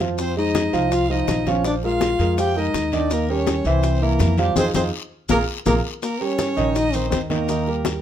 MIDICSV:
0, 0, Header, 1, 6, 480
1, 0, Start_track
1, 0, Tempo, 365186
1, 243, Time_signature, 4, 2, 24, 8
1, 10538, End_track
2, 0, Start_track
2, 0, Title_t, "Fiddle"
2, 0, Program_c, 0, 110
2, 264, Note_on_c, 0, 72, 78
2, 477, Note_off_c, 0, 72, 0
2, 497, Note_on_c, 0, 75, 75
2, 1219, Note_on_c, 0, 77, 88
2, 1239, Note_off_c, 0, 75, 0
2, 1460, Note_on_c, 0, 75, 82
2, 1479, Note_off_c, 0, 77, 0
2, 1939, Note_on_c, 0, 73, 73
2, 1959, Note_off_c, 0, 75, 0
2, 2163, Note_off_c, 0, 73, 0
2, 2171, Note_on_c, 0, 74, 82
2, 2277, Note_off_c, 0, 74, 0
2, 2424, Note_on_c, 0, 77, 85
2, 3082, Note_off_c, 0, 77, 0
2, 3136, Note_on_c, 0, 79, 88
2, 3384, Note_on_c, 0, 75, 86
2, 3403, Note_off_c, 0, 79, 0
2, 3861, Note_on_c, 0, 74, 76
2, 3881, Note_off_c, 0, 75, 0
2, 4103, Note_on_c, 0, 70, 81
2, 4123, Note_off_c, 0, 74, 0
2, 4346, Note_on_c, 0, 73, 81
2, 4366, Note_off_c, 0, 70, 0
2, 4823, Note_on_c, 0, 72, 75
2, 4843, Note_off_c, 0, 73, 0
2, 5287, Note_on_c, 0, 70, 77
2, 5307, Note_off_c, 0, 72, 0
2, 5764, Note_off_c, 0, 70, 0
2, 5786, Note_on_c, 0, 67, 76
2, 5997, Note_off_c, 0, 67, 0
2, 6010, Note_on_c, 0, 72, 95
2, 6160, Note_off_c, 0, 72, 0
2, 6238, Note_on_c, 0, 72, 77
2, 6393, Note_off_c, 0, 72, 0
2, 6965, Note_on_c, 0, 70, 100
2, 7117, Note_off_c, 0, 70, 0
2, 7444, Note_on_c, 0, 70, 83
2, 7597, Note_off_c, 0, 70, 0
2, 7930, Note_on_c, 0, 70, 77
2, 8175, Note_on_c, 0, 73, 87
2, 8195, Note_off_c, 0, 70, 0
2, 8887, Note_on_c, 0, 75, 95
2, 8907, Note_off_c, 0, 73, 0
2, 9117, Note_on_c, 0, 72, 81
2, 9137, Note_off_c, 0, 75, 0
2, 9360, Note_off_c, 0, 72, 0
2, 9371, Note_on_c, 0, 72, 75
2, 9477, Note_off_c, 0, 72, 0
2, 9601, Note_on_c, 0, 70, 69
2, 10511, Note_off_c, 0, 70, 0
2, 10538, End_track
3, 0, Start_track
3, 0, Title_t, "Grand piano"
3, 0, Program_c, 1, 0
3, 4, Note_on_c, 1, 53, 88
3, 9, Note_on_c, 1, 65, 82
3, 9, Note_on_c, 1, 77, 82
3, 397, Note_off_c, 1, 53, 0
3, 400, Note_off_c, 1, 65, 0
3, 400, Note_off_c, 1, 77, 0
3, 481, Note_on_c, 1, 56, 66
3, 484, Note_on_c, 1, 68, 62
3, 490, Note_on_c, 1, 72, 59
3, 875, Note_off_c, 1, 56, 0
3, 876, Note_off_c, 1, 68, 0
3, 880, Note_off_c, 1, 72, 0
3, 960, Note_on_c, 1, 53, 90
3, 964, Note_on_c, 1, 65, 81
3, 967, Note_on_c, 1, 77, 86
3, 1354, Note_off_c, 1, 53, 0
3, 1356, Note_off_c, 1, 65, 0
3, 1358, Note_off_c, 1, 77, 0
3, 1446, Note_on_c, 1, 53, 80
3, 1451, Note_on_c, 1, 65, 71
3, 1451, Note_on_c, 1, 77, 83
3, 1837, Note_off_c, 1, 53, 0
3, 1840, Note_off_c, 1, 65, 0
3, 1841, Note_off_c, 1, 77, 0
3, 1932, Note_on_c, 1, 53, 82
3, 1938, Note_on_c, 1, 65, 80
3, 1942, Note_on_c, 1, 77, 84
3, 2124, Note_off_c, 1, 53, 0
3, 2128, Note_off_c, 1, 65, 0
3, 2130, Note_off_c, 1, 77, 0
3, 2169, Note_on_c, 1, 53, 78
3, 2172, Note_on_c, 1, 65, 76
3, 2177, Note_on_c, 1, 77, 74
3, 2363, Note_off_c, 1, 53, 0
3, 2364, Note_off_c, 1, 65, 0
3, 2367, Note_off_c, 1, 77, 0
3, 2416, Note_on_c, 1, 56, 64
3, 2417, Note_on_c, 1, 68, 59
3, 2424, Note_on_c, 1, 70, 68
3, 2803, Note_off_c, 1, 56, 0
3, 2804, Note_off_c, 1, 68, 0
3, 2808, Note_off_c, 1, 70, 0
3, 2890, Note_on_c, 1, 56, 66
3, 2891, Note_on_c, 1, 68, 69
3, 2898, Note_on_c, 1, 70, 70
3, 3083, Note_off_c, 1, 56, 0
3, 3083, Note_off_c, 1, 68, 0
3, 3087, Note_off_c, 1, 70, 0
3, 3128, Note_on_c, 1, 53, 78
3, 3133, Note_on_c, 1, 77, 74
3, 3134, Note_on_c, 1, 65, 83
3, 3322, Note_off_c, 1, 53, 0
3, 3324, Note_off_c, 1, 77, 0
3, 3325, Note_off_c, 1, 65, 0
3, 3363, Note_on_c, 1, 56, 67
3, 3367, Note_on_c, 1, 68, 63
3, 3372, Note_on_c, 1, 70, 67
3, 3755, Note_off_c, 1, 56, 0
3, 3758, Note_off_c, 1, 68, 0
3, 3760, Note_off_c, 1, 70, 0
3, 3848, Note_on_c, 1, 51, 80
3, 3852, Note_on_c, 1, 63, 88
3, 3856, Note_on_c, 1, 75, 87
3, 4238, Note_off_c, 1, 51, 0
3, 4241, Note_off_c, 1, 63, 0
3, 4243, Note_off_c, 1, 75, 0
3, 4323, Note_on_c, 1, 55, 61
3, 4330, Note_on_c, 1, 67, 72
3, 4331, Note_on_c, 1, 70, 65
3, 4715, Note_off_c, 1, 55, 0
3, 4720, Note_off_c, 1, 67, 0
3, 4720, Note_off_c, 1, 70, 0
3, 4811, Note_on_c, 1, 52, 90
3, 4814, Note_on_c, 1, 64, 76
3, 4817, Note_on_c, 1, 76, 85
3, 5200, Note_off_c, 1, 52, 0
3, 5202, Note_off_c, 1, 64, 0
3, 5204, Note_off_c, 1, 76, 0
3, 5283, Note_on_c, 1, 52, 76
3, 5290, Note_on_c, 1, 64, 83
3, 5294, Note_on_c, 1, 76, 76
3, 5676, Note_off_c, 1, 52, 0
3, 5680, Note_off_c, 1, 64, 0
3, 5682, Note_off_c, 1, 76, 0
3, 5763, Note_on_c, 1, 53, 82
3, 5767, Note_on_c, 1, 65, 89
3, 5771, Note_on_c, 1, 77, 82
3, 5959, Note_off_c, 1, 53, 0
3, 5961, Note_off_c, 1, 65, 0
3, 5964, Note_off_c, 1, 77, 0
3, 6003, Note_on_c, 1, 63, 96
3, 6003, Note_on_c, 1, 65, 90
3, 6003, Note_on_c, 1, 68, 98
3, 6155, Note_off_c, 1, 65, 0
3, 6156, Note_off_c, 1, 63, 0
3, 6156, Note_off_c, 1, 68, 0
3, 6250, Note_on_c, 1, 63, 87
3, 6251, Note_on_c, 1, 68, 84
3, 6252, Note_on_c, 1, 65, 83
3, 6400, Note_off_c, 1, 63, 0
3, 6401, Note_off_c, 1, 65, 0
3, 6401, Note_off_c, 1, 68, 0
3, 6967, Note_on_c, 1, 70, 97
3, 6970, Note_on_c, 1, 68, 98
3, 6972, Note_on_c, 1, 65, 93
3, 7118, Note_off_c, 1, 70, 0
3, 7120, Note_off_c, 1, 68, 0
3, 7121, Note_off_c, 1, 65, 0
3, 7444, Note_on_c, 1, 65, 95
3, 7446, Note_on_c, 1, 68, 89
3, 7446, Note_on_c, 1, 70, 90
3, 7597, Note_off_c, 1, 65, 0
3, 7598, Note_off_c, 1, 68, 0
3, 7598, Note_off_c, 1, 70, 0
3, 8159, Note_on_c, 1, 55, 60
3, 8159, Note_on_c, 1, 67, 67
3, 8165, Note_on_c, 1, 70, 57
3, 8554, Note_off_c, 1, 55, 0
3, 8554, Note_off_c, 1, 67, 0
3, 8558, Note_off_c, 1, 70, 0
3, 8630, Note_on_c, 1, 51, 88
3, 8634, Note_on_c, 1, 63, 92
3, 8637, Note_on_c, 1, 75, 92
3, 9029, Note_off_c, 1, 51, 0
3, 9031, Note_off_c, 1, 63, 0
3, 9033, Note_off_c, 1, 75, 0
3, 9125, Note_on_c, 1, 51, 74
3, 9129, Note_on_c, 1, 63, 82
3, 9133, Note_on_c, 1, 75, 82
3, 9518, Note_off_c, 1, 51, 0
3, 9521, Note_off_c, 1, 63, 0
3, 9523, Note_off_c, 1, 75, 0
3, 9595, Note_on_c, 1, 51, 84
3, 9599, Note_on_c, 1, 63, 84
3, 9603, Note_on_c, 1, 75, 80
3, 9795, Note_off_c, 1, 51, 0
3, 9798, Note_off_c, 1, 63, 0
3, 9800, Note_off_c, 1, 75, 0
3, 9847, Note_on_c, 1, 51, 81
3, 9853, Note_on_c, 1, 63, 77
3, 9854, Note_on_c, 1, 75, 76
3, 10043, Note_off_c, 1, 51, 0
3, 10046, Note_off_c, 1, 63, 0
3, 10047, Note_off_c, 1, 75, 0
3, 10087, Note_on_c, 1, 55, 70
3, 10089, Note_on_c, 1, 67, 67
3, 10093, Note_on_c, 1, 70, 66
3, 10480, Note_off_c, 1, 55, 0
3, 10481, Note_off_c, 1, 67, 0
3, 10483, Note_off_c, 1, 70, 0
3, 10538, End_track
4, 0, Start_track
4, 0, Title_t, "Trombone"
4, 0, Program_c, 2, 57
4, 259, Note_on_c, 2, 60, 89
4, 474, Note_off_c, 2, 60, 0
4, 503, Note_on_c, 2, 63, 95
4, 1201, Note_on_c, 2, 65, 100
4, 1220, Note_off_c, 2, 63, 0
4, 1457, Note_on_c, 2, 63, 93
4, 1477, Note_off_c, 2, 65, 0
4, 1941, Note_on_c, 2, 61, 84
4, 1961, Note_off_c, 2, 63, 0
4, 2171, Note_off_c, 2, 61, 0
4, 2200, Note_on_c, 2, 62, 94
4, 2299, Note_off_c, 2, 62, 0
4, 2430, Note_on_c, 2, 65, 101
4, 3086, Note_off_c, 2, 65, 0
4, 3145, Note_on_c, 2, 67, 99
4, 3382, Note_on_c, 2, 63, 96
4, 3402, Note_off_c, 2, 67, 0
4, 3859, Note_on_c, 2, 62, 92
4, 3879, Note_off_c, 2, 63, 0
4, 4101, Note_on_c, 2, 58, 91
4, 4121, Note_off_c, 2, 62, 0
4, 4343, Note_on_c, 2, 61, 89
4, 4363, Note_off_c, 2, 58, 0
4, 4812, Note_on_c, 2, 60, 85
4, 4832, Note_off_c, 2, 61, 0
4, 5292, Note_on_c, 2, 58, 94
4, 5311, Note_off_c, 2, 60, 0
4, 5766, Note_off_c, 2, 58, 0
4, 5773, Note_on_c, 2, 55, 82
4, 5980, Note_off_c, 2, 55, 0
4, 5988, Note_on_c, 2, 60, 92
4, 6107, Note_off_c, 2, 60, 0
4, 6241, Note_on_c, 2, 60, 85
4, 6356, Note_off_c, 2, 60, 0
4, 6960, Note_on_c, 2, 58, 93
4, 7076, Note_off_c, 2, 58, 0
4, 7439, Note_on_c, 2, 58, 93
4, 7555, Note_off_c, 2, 58, 0
4, 7922, Note_on_c, 2, 58, 78
4, 8167, Note_on_c, 2, 61, 90
4, 8186, Note_off_c, 2, 58, 0
4, 8870, Note_on_c, 2, 63, 103
4, 8890, Note_off_c, 2, 61, 0
4, 9112, Note_on_c, 2, 60, 88
4, 9132, Note_off_c, 2, 63, 0
4, 9327, Note_off_c, 2, 60, 0
4, 9334, Note_on_c, 2, 60, 81
4, 9449, Note_off_c, 2, 60, 0
4, 9594, Note_on_c, 2, 58, 80
4, 10507, Note_off_c, 2, 58, 0
4, 10538, End_track
5, 0, Start_track
5, 0, Title_t, "Upright bass"
5, 0, Program_c, 3, 32
5, 0, Note_on_c, 3, 41, 81
5, 885, Note_off_c, 3, 41, 0
5, 963, Note_on_c, 3, 36, 79
5, 1632, Note_off_c, 3, 36, 0
5, 1679, Note_on_c, 3, 34, 90
5, 2803, Note_off_c, 3, 34, 0
5, 2875, Note_on_c, 3, 41, 93
5, 3547, Note_off_c, 3, 41, 0
5, 3598, Note_on_c, 3, 39, 88
5, 4723, Note_off_c, 3, 39, 0
5, 4791, Note_on_c, 3, 36, 91
5, 5465, Note_off_c, 3, 36, 0
5, 5512, Note_on_c, 3, 41, 87
5, 5963, Note_off_c, 3, 41, 0
5, 5991, Note_on_c, 3, 41, 75
5, 6174, Note_off_c, 3, 41, 0
5, 6237, Note_on_c, 3, 41, 94
5, 6418, Note_off_c, 3, 41, 0
5, 6955, Note_on_c, 3, 34, 92
5, 7137, Note_off_c, 3, 34, 0
5, 7437, Note_on_c, 3, 34, 93
5, 7618, Note_off_c, 3, 34, 0
5, 8637, Note_on_c, 3, 34, 89
5, 9309, Note_off_c, 3, 34, 0
5, 9355, Note_on_c, 3, 39, 86
5, 10484, Note_off_c, 3, 39, 0
5, 10538, End_track
6, 0, Start_track
6, 0, Title_t, "Drums"
6, 0, Note_on_c, 9, 73, 70
6, 2, Note_on_c, 9, 70, 28
6, 5, Note_on_c, 9, 60, 31
6, 11, Note_on_c, 9, 63, 59
6, 127, Note_off_c, 9, 73, 0
6, 133, Note_off_c, 9, 70, 0
6, 136, Note_off_c, 9, 60, 0
6, 142, Note_off_c, 9, 63, 0
6, 234, Note_on_c, 9, 74, 54
6, 239, Note_on_c, 9, 70, 73
6, 246, Note_on_c, 9, 60, 54
6, 253, Note_on_c, 9, 63, 34
6, 366, Note_off_c, 9, 74, 0
6, 371, Note_off_c, 9, 70, 0
6, 377, Note_off_c, 9, 60, 0
6, 384, Note_off_c, 9, 63, 0
6, 492, Note_on_c, 9, 63, 32
6, 623, Note_off_c, 9, 63, 0
6, 720, Note_on_c, 9, 63, 90
6, 721, Note_on_c, 9, 73, 72
6, 723, Note_on_c, 9, 70, 68
6, 727, Note_on_c, 9, 60, 53
6, 851, Note_off_c, 9, 63, 0
6, 852, Note_off_c, 9, 73, 0
6, 854, Note_off_c, 9, 70, 0
6, 858, Note_off_c, 9, 60, 0
6, 960, Note_on_c, 9, 73, 69
6, 966, Note_on_c, 9, 63, 32
6, 966, Note_on_c, 9, 70, 28
6, 1092, Note_off_c, 9, 73, 0
6, 1098, Note_off_c, 9, 63, 0
6, 1098, Note_off_c, 9, 70, 0
6, 1204, Note_on_c, 9, 74, 66
6, 1206, Note_on_c, 9, 70, 62
6, 1208, Note_on_c, 9, 60, 60
6, 1335, Note_off_c, 9, 74, 0
6, 1337, Note_off_c, 9, 70, 0
6, 1340, Note_off_c, 9, 60, 0
6, 1450, Note_on_c, 9, 63, 34
6, 1581, Note_off_c, 9, 63, 0
6, 1682, Note_on_c, 9, 70, 68
6, 1683, Note_on_c, 9, 60, 72
6, 1683, Note_on_c, 9, 61, 76
6, 1686, Note_on_c, 9, 73, 57
6, 1687, Note_on_c, 9, 63, 77
6, 1813, Note_off_c, 9, 70, 0
6, 1815, Note_off_c, 9, 60, 0
6, 1815, Note_off_c, 9, 61, 0
6, 1817, Note_off_c, 9, 73, 0
6, 1819, Note_off_c, 9, 63, 0
6, 1928, Note_on_c, 9, 63, 72
6, 1928, Note_on_c, 9, 70, 26
6, 1928, Note_on_c, 9, 73, 72
6, 2059, Note_off_c, 9, 70, 0
6, 2059, Note_off_c, 9, 73, 0
6, 2060, Note_off_c, 9, 63, 0
6, 2162, Note_on_c, 9, 60, 66
6, 2167, Note_on_c, 9, 70, 64
6, 2170, Note_on_c, 9, 63, 33
6, 2293, Note_off_c, 9, 60, 0
6, 2298, Note_off_c, 9, 70, 0
6, 2302, Note_off_c, 9, 63, 0
6, 2403, Note_on_c, 9, 63, 33
6, 2407, Note_on_c, 9, 60, 35
6, 2535, Note_off_c, 9, 63, 0
6, 2538, Note_off_c, 9, 60, 0
6, 2640, Note_on_c, 9, 63, 83
6, 2642, Note_on_c, 9, 73, 61
6, 2646, Note_on_c, 9, 70, 62
6, 2648, Note_on_c, 9, 60, 59
6, 2772, Note_off_c, 9, 63, 0
6, 2774, Note_off_c, 9, 73, 0
6, 2778, Note_off_c, 9, 70, 0
6, 2780, Note_off_c, 9, 60, 0
6, 2879, Note_on_c, 9, 73, 63
6, 2880, Note_on_c, 9, 63, 31
6, 2887, Note_on_c, 9, 70, 29
6, 3010, Note_off_c, 9, 73, 0
6, 3012, Note_off_c, 9, 63, 0
6, 3018, Note_off_c, 9, 70, 0
6, 3118, Note_on_c, 9, 63, 32
6, 3124, Note_on_c, 9, 74, 72
6, 3130, Note_on_c, 9, 60, 57
6, 3131, Note_on_c, 9, 70, 73
6, 3249, Note_off_c, 9, 63, 0
6, 3255, Note_off_c, 9, 74, 0
6, 3261, Note_off_c, 9, 60, 0
6, 3262, Note_off_c, 9, 70, 0
6, 3362, Note_on_c, 9, 63, 34
6, 3364, Note_on_c, 9, 60, 33
6, 3493, Note_off_c, 9, 63, 0
6, 3495, Note_off_c, 9, 60, 0
6, 3599, Note_on_c, 9, 73, 64
6, 3607, Note_on_c, 9, 60, 66
6, 3607, Note_on_c, 9, 61, 79
6, 3608, Note_on_c, 9, 63, 30
6, 3611, Note_on_c, 9, 70, 63
6, 3730, Note_off_c, 9, 73, 0
6, 3739, Note_off_c, 9, 60, 0
6, 3739, Note_off_c, 9, 61, 0
6, 3739, Note_off_c, 9, 63, 0
6, 3743, Note_off_c, 9, 70, 0
6, 3839, Note_on_c, 9, 73, 67
6, 3848, Note_on_c, 9, 60, 34
6, 3849, Note_on_c, 9, 63, 64
6, 3849, Note_on_c, 9, 70, 28
6, 3971, Note_off_c, 9, 73, 0
6, 3979, Note_off_c, 9, 60, 0
6, 3980, Note_off_c, 9, 63, 0
6, 3980, Note_off_c, 9, 70, 0
6, 4081, Note_on_c, 9, 74, 59
6, 4083, Note_on_c, 9, 70, 75
6, 4086, Note_on_c, 9, 60, 60
6, 4086, Note_on_c, 9, 63, 31
6, 4212, Note_off_c, 9, 74, 0
6, 4214, Note_off_c, 9, 70, 0
6, 4218, Note_off_c, 9, 60, 0
6, 4218, Note_off_c, 9, 63, 0
6, 4322, Note_on_c, 9, 63, 34
6, 4453, Note_off_c, 9, 63, 0
6, 4556, Note_on_c, 9, 73, 67
6, 4559, Note_on_c, 9, 70, 68
6, 4562, Note_on_c, 9, 63, 89
6, 4566, Note_on_c, 9, 60, 54
6, 4687, Note_off_c, 9, 73, 0
6, 4690, Note_off_c, 9, 70, 0
6, 4694, Note_off_c, 9, 63, 0
6, 4698, Note_off_c, 9, 60, 0
6, 4798, Note_on_c, 9, 70, 32
6, 4798, Note_on_c, 9, 73, 62
6, 4805, Note_on_c, 9, 63, 31
6, 4929, Note_off_c, 9, 70, 0
6, 4929, Note_off_c, 9, 73, 0
6, 4936, Note_off_c, 9, 63, 0
6, 5034, Note_on_c, 9, 74, 66
6, 5037, Note_on_c, 9, 70, 64
6, 5042, Note_on_c, 9, 60, 61
6, 5044, Note_on_c, 9, 63, 34
6, 5165, Note_off_c, 9, 74, 0
6, 5168, Note_off_c, 9, 70, 0
6, 5173, Note_off_c, 9, 60, 0
6, 5175, Note_off_c, 9, 63, 0
6, 5284, Note_on_c, 9, 63, 36
6, 5416, Note_off_c, 9, 63, 0
6, 5512, Note_on_c, 9, 63, 80
6, 5515, Note_on_c, 9, 70, 61
6, 5517, Note_on_c, 9, 73, 65
6, 5523, Note_on_c, 9, 60, 64
6, 5523, Note_on_c, 9, 61, 74
6, 5644, Note_off_c, 9, 63, 0
6, 5647, Note_off_c, 9, 70, 0
6, 5648, Note_off_c, 9, 73, 0
6, 5654, Note_off_c, 9, 60, 0
6, 5654, Note_off_c, 9, 61, 0
6, 5750, Note_on_c, 9, 70, 30
6, 5752, Note_on_c, 9, 73, 69
6, 5756, Note_on_c, 9, 63, 71
6, 5881, Note_off_c, 9, 70, 0
6, 5883, Note_off_c, 9, 73, 0
6, 5888, Note_off_c, 9, 63, 0
6, 5991, Note_on_c, 9, 63, 96
6, 5997, Note_on_c, 9, 70, 94
6, 5997, Note_on_c, 9, 74, 81
6, 5999, Note_on_c, 9, 61, 85
6, 6123, Note_off_c, 9, 63, 0
6, 6128, Note_off_c, 9, 70, 0
6, 6128, Note_off_c, 9, 74, 0
6, 6130, Note_off_c, 9, 61, 0
6, 6234, Note_on_c, 9, 63, 96
6, 6236, Note_on_c, 9, 70, 87
6, 6237, Note_on_c, 9, 74, 97
6, 6239, Note_on_c, 9, 61, 88
6, 6366, Note_off_c, 9, 63, 0
6, 6367, Note_off_c, 9, 70, 0
6, 6369, Note_off_c, 9, 74, 0
6, 6371, Note_off_c, 9, 61, 0
6, 6951, Note_on_c, 9, 70, 86
6, 6953, Note_on_c, 9, 63, 91
6, 6954, Note_on_c, 9, 74, 97
6, 6959, Note_on_c, 9, 61, 86
6, 7083, Note_off_c, 9, 70, 0
6, 7084, Note_off_c, 9, 63, 0
6, 7085, Note_off_c, 9, 74, 0
6, 7091, Note_off_c, 9, 61, 0
6, 7435, Note_on_c, 9, 74, 87
6, 7437, Note_on_c, 9, 70, 82
6, 7443, Note_on_c, 9, 61, 94
6, 7445, Note_on_c, 9, 63, 93
6, 7566, Note_off_c, 9, 74, 0
6, 7569, Note_off_c, 9, 70, 0
6, 7575, Note_off_c, 9, 61, 0
6, 7576, Note_off_c, 9, 63, 0
6, 7918, Note_on_c, 9, 74, 66
6, 7919, Note_on_c, 9, 63, 35
6, 7919, Note_on_c, 9, 70, 70
6, 7926, Note_on_c, 9, 60, 62
6, 8050, Note_off_c, 9, 74, 0
6, 8051, Note_off_c, 9, 63, 0
6, 8051, Note_off_c, 9, 70, 0
6, 8058, Note_off_c, 9, 60, 0
6, 8162, Note_on_c, 9, 63, 33
6, 8293, Note_off_c, 9, 63, 0
6, 8395, Note_on_c, 9, 63, 91
6, 8395, Note_on_c, 9, 70, 71
6, 8396, Note_on_c, 9, 73, 64
6, 8404, Note_on_c, 9, 60, 49
6, 8526, Note_off_c, 9, 63, 0
6, 8527, Note_off_c, 9, 70, 0
6, 8527, Note_off_c, 9, 73, 0
6, 8536, Note_off_c, 9, 60, 0
6, 8636, Note_on_c, 9, 70, 30
6, 8639, Note_on_c, 9, 63, 30
6, 8639, Note_on_c, 9, 73, 62
6, 8767, Note_off_c, 9, 70, 0
6, 8770, Note_off_c, 9, 63, 0
6, 8771, Note_off_c, 9, 73, 0
6, 8879, Note_on_c, 9, 70, 68
6, 8881, Note_on_c, 9, 74, 69
6, 8883, Note_on_c, 9, 63, 35
6, 8886, Note_on_c, 9, 60, 60
6, 9010, Note_off_c, 9, 70, 0
6, 9012, Note_off_c, 9, 74, 0
6, 9014, Note_off_c, 9, 63, 0
6, 9018, Note_off_c, 9, 60, 0
6, 9112, Note_on_c, 9, 70, 57
6, 9127, Note_on_c, 9, 63, 32
6, 9244, Note_off_c, 9, 70, 0
6, 9258, Note_off_c, 9, 63, 0
6, 9357, Note_on_c, 9, 70, 69
6, 9361, Note_on_c, 9, 63, 74
6, 9362, Note_on_c, 9, 60, 70
6, 9362, Note_on_c, 9, 61, 78
6, 9362, Note_on_c, 9, 73, 69
6, 9489, Note_off_c, 9, 70, 0
6, 9493, Note_off_c, 9, 60, 0
6, 9493, Note_off_c, 9, 61, 0
6, 9493, Note_off_c, 9, 63, 0
6, 9494, Note_off_c, 9, 73, 0
6, 9595, Note_on_c, 9, 63, 73
6, 9597, Note_on_c, 9, 73, 70
6, 9603, Note_on_c, 9, 70, 29
6, 9726, Note_off_c, 9, 63, 0
6, 9728, Note_off_c, 9, 73, 0
6, 9734, Note_off_c, 9, 70, 0
6, 9835, Note_on_c, 9, 74, 57
6, 9840, Note_on_c, 9, 70, 73
6, 9841, Note_on_c, 9, 63, 34
6, 9843, Note_on_c, 9, 60, 59
6, 9966, Note_off_c, 9, 74, 0
6, 9972, Note_off_c, 9, 63, 0
6, 9972, Note_off_c, 9, 70, 0
6, 9974, Note_off_c, 9, 60, 0
6, 10078, Note_on_c, 9, 63, 34
6, 10085, Note_on_c, 9, 60, 34
6, 10210, Note_off_c, 9, 63, 0
6, 10216, Note_off_c, 9, 60, 0
6, 10315, Note_on_c, 9, 73, 66
6, 10316, Note_on_c, 9, 63, 93
6, 10321, Note_on_c, 9, 70, 68
6, 10324, Note_on_c, 9, 60, 56
6, 10446, Note_off_c, 9, 73, 0
6, 10447, Note_off_c, 9, 63, 0
6, 10452, Note_off_c, 9, 70, 0
6, 10456, Note_off_c, 9, 60, 0
6, 10538, End_track
0, 0, End_of_file